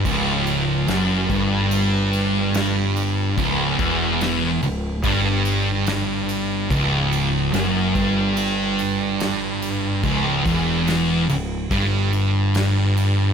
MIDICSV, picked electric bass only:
0, 0, Header, 1, 2, 480
1, 0, Start_track
1, 0, Tempo, 833333
1, 32, Time_signature, 4, 2, 24, 8
1, 7681, End_track
2, 0, Start_track
2, 0, Title_t, "Picked electric bass"
2, 0, Program_c, 0, 34
2, 27, Note_on_c, 0, 25, 99
2, 485, Note_off_c, 0, 25, 0
2, 506, Note_on_c, 0, 30, 96
2, 731, Note_off_c, 0, 30, 0
2, 744, Note_on_c, 0, 31, 108
2, 1921, Note_off_c, 0, 31, 0
2, 1944, Note_on_c, 0, 25, 93
2, 2168, Note_off_c, 0, 25, 0
2, 2182, Note_on_c, 0, 28, 87
2, 2641, Note_off_c, 0, 28, 0
2, 2658, Note_on_c, 0, 25, 84
2, 2885, Note_off_c, 0, 25, 0
2, 2902, Note_on_c, 0, 31, 94
2, 3840, Note_off_c, 0, 31, 0
2, 3860, Note_on_c, 0, 25, 87
2, 4319, Note_off_c, 0, 25, 0
2, 4335, Note_on_c, 0, 30, 92
2, 4563, Note_off_c, 0, 30, 0
2, 4580, Note_on_c, 0, 31, 98
2, 5761, Note_off_c, 0, 31, 0
2, 5780, Note_on_c, 0, 25, 94
2, 6007, Note_off_c, 0, 25, 0
2, 6021, Note_on_c, 0, 28, 92
2, 6482, Note_off_c, 0, 28, 0
2, 6507, Note_on_c, 0, 25, 85
2, 6732, Note_off_c, 0, 25, 0
2, 6745, Note_on_c, 0, 31, 91
2, 7681, Note_off_c, 0, 31, 0
2, 7681, End_track
0, 0, End_of_file